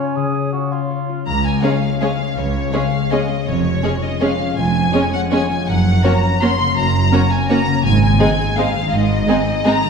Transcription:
0.00 0.15 C#3 soft
0.00 0.18 C#4 soft
0.00 0.33 C#4 soft
0.00 1.09 C#4 soft
0.00 0.51 F4 soft
0.00 1.44 G#4 soft
0.00 0.89 C#5 soft
0.00 1.09 C#5 medium
0.00 0.70 G#5 soft
0.16 1.25 C#3 soft
0.16 0.52 G#4 soft
0.34 1.62 C#4 soft
0.52 1.08 F4 soft
0.52 0.73 F#4 medium
0.72 1.27 F4 soft
0.72 4.62 G#5 soft
0.90 4.80 C#5 soft
1.09 4.99 F4 soft
1.26 1.57 C#2 soft
1.26 2.36 C#3 soft
1.26 1.43 A#5 medium
1.45 1.81 G#4 soft
1.45 1.63 G#5 medium
1.63 1.71 G#3 soft
1.63 2.00 C#4 soft
1.63 1.72 C#4 soft
1.63 1.71 G#4 soft
1.63 1.71 C#5 soft
1.63 1.99 F5 medium
1.83 2.54 G#4 soft
2.00 2.10 G#3 soft
2.00 2.73 C#4 soft
2.00 2.10 C#4 soft
2.00 2.09 G#4 soft
2.00 2.09 C#5 soft
2.00 2.36 F5 medium
2.20 3.29 G#3 soft
2.37 2.67 C#2 soft
2.37 3.49 C#3 soft
2.37 2.73 C#5 medium
2.55 2.91 G#4 soft
2.73 2.82 G#3 soft
2.73 3.11 C#4 soft
2.73 2.82 C#4 soft
2.73 2.81 G#4 soft
2.73 2.81 C#5 soft
2.73 3.11 F5 medium
2.93 5.69 G#4 soft
3.11 3.20 G#3 soft
3.11 3.64 C#4 soft
3.11 3.20 C#4 soft
3.11 3.19 G#4 soft
3.11 3.19 C#5 soft
3.11 3.47 D#5 medium
3.30 3.82 G#3 soft
3.48 3.77 F1 soft
3.48 3.77 F2 medium
3.48 4.56 F2 soft
3.48 4.02 C#5 medium
3.65 4.01 C#4 soft
3.83 4.20 G#3 soft
3.83 3.92 G#3 soft
3.83 3.92 C#4 soft
3.83 3.91 G#4 soft
3.83 3.91 C#5 soft
4.03 4.73 C#4 soft
4.03 4.21 D#5 medium
4.20 4.92 G#3 soft
4.20 4.29 G#3 soft
4.20 4.29 C#4 soft
4.20 4.28 G#4 soft
4.20 4.28 C#5 soft
4.20 4.57 F5 medium
4.39 5.49 F3 soft
4.56 4.87 F1 soft
4.56 4.87 F2 soft
4.56 5.69 F2 soft
4.56 5.11 G#5 medium
4.74 5.11 C#4 soft
4.93 5.30 G#3 soft
4.93 5.02 G#3 soft
4.93 5.02 C#4 soft
4.93 5.01 G#4 soft
4.93 5.01 C#5 soft
5.13 5.84 C#4 soft
5.13 5.20 F#5 medium
5.31 5.69 G#3 soft
5.31 5.40 G#3 soft
5.31 5.39 C#4 soft
5.31 5.39 G#4 soft
5.31 5.39 C#5 soft
5.31 5.48 G#5 medium
5.50 5.69 F3 soft
5.50 5.67 G#5 medium
5.67 5.97 F#1 medium
5.67 5.97 F#2 medium
5.67 6.76 F#2 soft
5.67 6.03 F#5 medium
5.85 6.22 C#4 soft
6.03 6.40 A#3 soft
6.03 6.12 A#3 soft
6.03 6.12 C#4 soft
6.03 6.11 F#4 soft
6.03 6.11 C#5 soft
6.03 6.41 A#5 medium
6.23 6.93 C#4 soft
6.41 6.49 A#3 soft
6.41 7.11 A#3 soft
6.41 6.49 C#4 soft
6.41 6.50 F#4 soft
6.41 6.50 C#5 soft
6.41 6.77 C6 medium
6.60 7.66 C#3 soft
6.76 7.06 F#1 medium
6.76 7.06 F#2 medium
6.76 7.86 F#2 soft
6.76 7.30 A#5 medium
6.94 7.30 C#4 soft
7.12 7.48 A#3 soft
7.12 7.20 A#3 soft
7.12 7.21 C#4 soft
7.12 7.20 F#4 soft
7.12 7.20 C#5 soft
7.31 7.86 C#4 soft
7.31 7.50 G#5 medium
7.49 7.86 A#3 soft
7.49 7.58 A#3 soft
7.49 7.58 C#4 soft
7.49 7.57 F#4 soft
7.49 7.57 C#5 soft
7.49 7.84 A#5 medium
7.67 7.85 C#3 soft
7.84 8.14 G#1 medium
7.84 8.91 G#2 soft
7.84 8.14 G#2 medium
7.84 8.00 G#5 medium
8.01 8.37 C4 soft
8.01 8.56 G#5 medium
8.19 8.28 G#3 soft
8.19 8.56 G#3 soft
8.19 8.28 C4 soft
8.19 8.27 D#4 soft
8.19 8.27 G#4 soft
8.39 9.09 C4 soft
8.57 9.27 G#3 soft
8.57 8.65 G#3 soft
8.57 8.66 C4 soft
8.57 8.65 D#4 soft
8.57 8.65 G#4 soft
8.57 8.92 F5 medium
8.75 9.83 D#3 soft
8.92 9.22 G#1 medium
8.92 9.22 G#2 medium
8.92 9.90 G#2 medium
8.92 9.66 D#5 medium
9.10 9.46 C4 soft
9.28 9.36 G#3 medium
9.28 9.64 G#3 soft
9.28 9.36 C4 soft
9.28 9.36 D#4 soft
9.28 9.36 G#4 medium
9.47 9.90 C4 soft
9.65 9.90 G#3 soft
9.65 9.74 G#3 soft
9.65 9.74 C4 soft
9.65 9.74 D#4 soft
9.65 9.73 G#4 medium
9.65 9.90 A#5 medium
9.84 9.90 D#3 soft

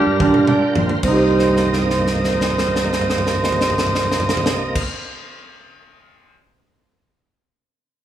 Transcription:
0.00 0.99 G3 medium
0.00 0.14 D4 medium
0.00 1.00 F4 medium
0.00 0.71 G4 loud
0.00 1.00 A#4 medium
0.06 0.59 G2 medium
0.20 0.42 D4 medium
0.20 kick medium
0.20 mid tom medium
0.34 mid tom medium
0.47 0.90 D4 medium
0.47 0.74 G5 medium
0.47 mid tom medium
0.75 0.87 A#1 medium
0.75 1.01 C5 medium
0.75 floor tom medium
0.89 floor tom medium
1.03 4.83 C2 medium
1.03 4.83 C3 medium
1.03 4.83 A#3 medium
1.03 4.83 C4 medium
1.03 4.83 C5 medium
1.03 4.83 D#5 medium
1.03 kick medium
1.03 crash medium
1.08 4.85 D#4 medium
1.08 4.87 G4 medium
1.16 4.89 C5 medium
1.31 floor tom soft
1.39 snare soft
1.48 floor tom soft
1.57 snare soft
1.65 floor tom soft
1.73 snare soft
1.82 floor tom soft
1.90 snare soft
1.99 floor tom soft
2.07 snare soft
2.15 floor tom medium
2.24 snare medium
2.33 floor tom medium
2.41 snare medium
2.50 floor tom medium
2.58 snare medium
2.67 floor tom medium
2.76 snare medium
2.84 floor tom medium
2.93 snare medium
3.01 floor tom medium
3.10 snare medium
3.18 floor tom medium
3.27 snare medium
3.35 floor tom medium
3.44 snare medium
3.52 floor tom medium
3.61 snare medium
3.70 floor tom medium
3.78 snare medium
3.86 floor tom medium
3.95 snare medium
4.03 floor tom medium
4.12 snare medium
4.20 floor tom medium
4.29 snare medium
4.37 floor tom medium
4.46 snare medium
4.75 kick medium
4.75 crash medium

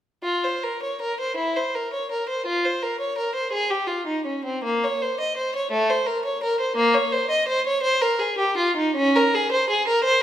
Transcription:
0.23 0.42 F4 medium
0.44 0.63 C5 medium
0.63 0.81 A#4 medium
0.83 1.00 C#5 soft
1.01 1.18 A#4 medium
1.20 1.37 C5 medium
1.36 1.54 E4 medium
1.56 1.74 C5 medium
1.75 1.92 A#4 soft
1.93 2.10 C#5 soft
2.11 2.28 A#4 medium
2.29 2.46 C5 medium
2.46 2.63 F4 medium
2.65 2.82 C5 medium
2.83 3.00 A#4 medium
3.00 3.17 C#5 medium
3.18 3.34 A#4 medium
3.35 3.52 C5 medium
3.52 3.69 G#4 medium
3.70 3.88 G4 medium
3.87 4.06 F4 soft
4.06 4.25 D#4 soft
4.26 4.44 C#4 soft
4.45 4.63 C4 medium
4.64 4.82 A#3 medium
4.84 5.01 C#5 medium
5.02 5.19 C5 medium
5.20 5.37 D#5 medium
5.37 5.54 C5 medium
5.56 5.72 C#5 medium
5.71 5.89 A3 medium
5.90 6.07 C5 medium
6.07 6.24 A#4 medium
6.25 6.42 C#5 medium
6.43 6.60 A#4 medium
6.60 6.77 C5 medium
6.76 6.94 A#3 medium
6.94 7.12 C#5 medium
7.12 7.30 C5 medium
7.30 7.48 D#5 medium
7.48 7.65 C5 medium
7.67 7.84 C#5 medium
7.83 8.01 C5 medium
8.01 8.20 A#4 medium
8.19 8.38 G#4 medium
8.38 8.57 G4 medium
8.57 8.76 F4 medium
8.76 8.95 D#4 medium
8.95 9.14 C#4 medium
9.16 9.33 A#4 medium
9.35 9.52 G#4 medium
9.52 9.68 C5 medium
9.70 9.86 G#4 medium
9.88 10.04 A#4 medium
10.04 10.21 C5 medium

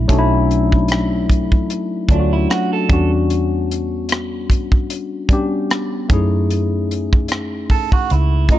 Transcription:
0.00 0.08 F#3 medium
0.00 0.09 A3 medium
0.00 0.10 C#4 medium
0.00 0.11 D4 medium
0.00 0.19 E4 medium
0.08 1.48 B1 medium
0.08 1.58 F#3 medium
0.08 1.59 A3 medium
0.08 1.60 C#4 medium
0.08 1.60 D4 medium
0.08 0.18 D#4 medium
0.08 kick medium
0.08 closed hi-hat medium
0.19 1.64 E4 loud
0.51 closed hi-hat medium
0.72 kick medium
0.88 cross-stick loud
0.88 closed hi-hat medium
1.30 kick medium
1.30 closed hi-hat medium
1.52 kick medium
1.70 closed hi-hat medium
2.09 2.45 D2 medium
2.09 2.84 F#3 medium
2.09 2.85 A3 medium
2.09 2.85 C#4 medium
2.09 2.32 D4 medium
2.09 2.86 D4 medium
2.09 kick medium
2.09 closed hi-hat medium
2.13 2.19 F4 medium
2.20 2.89 F#4 medium
2.33 2.49 E4 medium
2.50 2.71 F#4 medium
2.50 cross-stick medium
2.50 closed hi-hat medium
2.73 3.11 A4 medium
2.88 4.69 E2 medium
2.88 4.39 G3 medium
2.88 4.39 B3 medium
2.88 4.40 C#4 medium
2.88 4.40 D4 medium
2.88 kick loud
2.88 closed hi-hat medium
2.93 4.41 F#4 medium
3.30 closed hi-hat medium
3.71 closed hi-hat medium
4.09 cross-stick medium
4.09 closed hi-hat medium
4.50 kick medium
4.50 closed hi-hat medium
4.72 kick medium
4.90 closed hi-hat medium
5.29 6.09 G3 medium
5.29 6.10 B3 medium
5.29 6.09 C#4 medium
5.29 6.11 D4 medium
5.29 kick medium
5.29 closed hi-hat medium
5.33 6.11 G4 medium
5.71 cross-stick loud
5.71 closed hi-hat medium
6.09 7.89 F#2 medium
6.09 7.59 A3 medium
6.09 7.60 C#4 medium
6.09 7.60 D#4 medium
6.09 7.60 E4 medium
6.09 kick loud
6.09 closed hi-hat medium
6.13 7.61 G#4 medium
6.50 closed hi-hat medium
6.91 closed hi-hat medium
7.13 kick medium
7.28 cross-stick medium
7.28 closed hi-hat medium
7.70 7.92 A4 medium
7.70 kick medium
7.70 open hi-hat soft
7.92 8.12 F#4 medium
7.92 kick medium
8.10 8.46 C#2 medium
8.10 8.49 E4 medium
8.10 closed hi-hat medium
8.49 8.59 A3 medium
8.49 8.59 C#4 medium
8.49 8.59 D#4 medium
8.49 8.59 E4 medium
8.49 8.59 D#5 medium
8.49 kick medium
8.49 closed hi-hat medium
8.53 8.59 F4 medium

